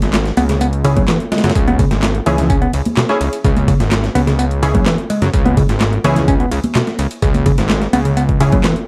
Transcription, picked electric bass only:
0.37 B3
0.49 C#3
0.61 B3
0.85 C#3
0.97 F#3
1.08 E3
1.32 G#3
1.44 C#3
1.68 B3
1.79 C#3
2.26 E3
2.50 C#4
2.62 B3
2.97 B2
3.44 C#3
3.68 C#3
4.15 B3
4.27 C#3
4.39 B3
4.63 C#3
4.75 F#3
4.86 E3
5.10 G#3
5.22 C#3
5.45 B3
5.57 C#3
6.04 E3
6.28 C#4
6.40 B3
6.75 B2
7.22 C#3
7.46 C#3
7.93 B3
8.05 C#3
8.17 B3
8.40 C#3
8.53 F#3
8.64 E3

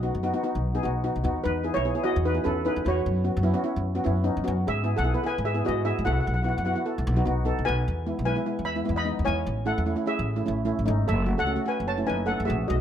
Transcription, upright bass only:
0.15 F#2
0.55 B1
0.85 B1
1.16 B1
1.24 D#2
1.45 E2
1.76 B1
2.16 E2
2.46 E2
2.76 E2
2.86 E2
3.06 F#2
3.37 F#2
3.76 F#2
4.06 F#2
4.37 F#2
4.48 F#2
4.68 G#2
4.98 B1
5.38 G#2
5.68 G#2
5.99 G#2
6.07 C2
6.27 B1
6.58 F#2
6.98 B1
7.07 B1
7.27 B1
7.59 B1
7.68 B1
7.88 E2
8.19 B1
8.59 E2
8.89 E2
9.19 E2
9.27 E2
9.46 A1
9.78 E2
10.19 A1
10.48 A1
10.79 A1
10.88 G#1
11.09 F#1
11.40 C#2
11.80 F#1
12.10 F#1
12.40 F#1
12.50 A#1
12.70 B1

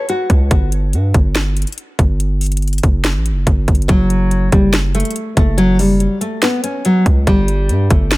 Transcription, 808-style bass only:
0.30 C#2
0.51 G1
0.93 G2
1.14 G1
1.99 G1
2.83 F#1
3.15 A1
3.31 F#1
3.47 G1
3.68 G1
3.89 F#1
4.52 F#1
5.37 F#1
7.06 C#2
7.27 G1
7.69 G2
7.91 G1

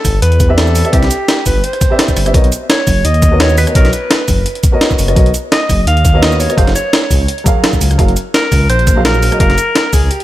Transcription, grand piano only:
0.48 C4 G4 B4 D5 E5
0.84 C4 G4 B4 D5 E5
0.92 C4 G4 B4 D5 E5
1.90 C4 G4 B4 D5 E5
2.25 C4 G4 B4 D5 E5
2.33 B3 F#4 A#4 C#5 D#5
3.31 B3 F#4 A#4 C#5 D#5
3.66 B3 F#4 A#4 C#5 D#5
3.74 B3 F#4 A#4 C#5 D#5
4.72 B3 F#4 A#4 C#5 D#5
5.07 B3 F#4 A#4 C#5 D#5
5.15 B3 F#4 A#4 C#5 D#5
6.13 B3 F#4 A#4 C#5 D#5
6.49 B3 F#4 A#4 C#5 D#5
6.57 F#3 F#4 G#4 A#4 F5
7.44 F#3 F#4 G#4 A#4 F5
7.98 F#3 F#4 G#4 A#4 F5
8.95 F#3 F#4 G#4 A#4 F5
9.31 F#3 F#4 G#4 A#4 D#5
9.39 F#3 F#4 G#4 A#4 F5

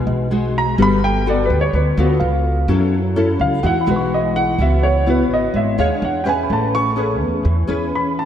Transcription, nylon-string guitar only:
Already playing: B2 G#3 D#4 F#4
0.31 G#3 D#4 F#4
0.78 G3 B3 F#4 A4
1.26 B3 F#4 A4
1.74 D3
1.97 B3 F4 A4
2.69 F#3 C#4 E4 A4
3.16 C#4 E4 A4
3.63 E3 G#3 D#4 F#4
3.86 G#3 D#4 F#4
4.59 C#3 B3 E4 F#4
5.06 B3 E4 F#4
5.54 G#3
5.78 D4 G#4 C#5
6.25 C#4 G#4 B4
6.50 A3
6.96 C#4 G#4 B4
7.43 E3
7.67 C#4 G#4 B4

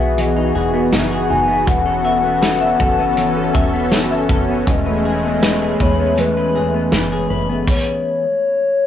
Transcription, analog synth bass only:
Already playing: B1
0.56 E1
0.93 F#1
1.31 F#1
1.68 E1
2.80 F#1
3.55 E1
3.93 F#1
4.30 F#1
4.67 E1
5.81 E2
6.55 E1
6.92 F#1
7.31 F#1

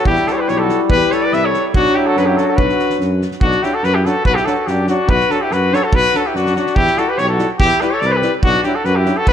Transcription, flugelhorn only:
0.09 E4
0.31 F#4
0.35 A4
0.41 G4
0.51 G4
0.64 F#4
0.95 G4
1.13 A4
1.26 B4
1.35 B4
1.45 A4
1.76 D4
1.98 E4
2.08 F#4
2.19 F#4
2.30 E4
2.40 F#4
2.52 F#4
2.62 F#4
3.44 D4
3.63 E4
3.73 F#4
3.84 F#4
3.95 E4
4.06 F#4
4.29 F#4
4.39 E4
4.49 F#4
4.71 D4
4.90 D4
5.11 F#4
5.32 F#4
5.43 E4
5.53 F#4
5.74 A4
5.83 F#4
5.94 F#4
6.17 F#4
6.28 E4
6.36 D4
6.56 D4
6.78 E4
6.98 F#4
7.11 G4
7.21 G4
7.31 F#4
7.64 E4
7.84 G4
7.94 A4
8.06 B4
8.17 G4
8.46 D4
8.67 E4
8.76 F#4
8.85 F#4
8.98 E4
9.19 F#4
9.30 F#4

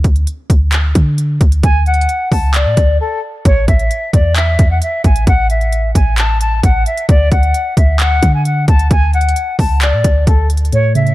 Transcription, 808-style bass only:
0.04 D2
0.50 D2
0.95 D3
1.41 D2
1.63 D2
2.32 C#2
2.66 A2
2.77 D2
3.45 A1
3.68 A1
4.13 E2
4.59 E2
5.04 A1
5.27 A1
5.95 A1
6.63 A1
7.09 D2
7.32 D2
7.77 D2
8.23 D3
8.68 D2
8.91 D2
9.59 C#2
9.93 A2
10.04 D2
10.27 D2

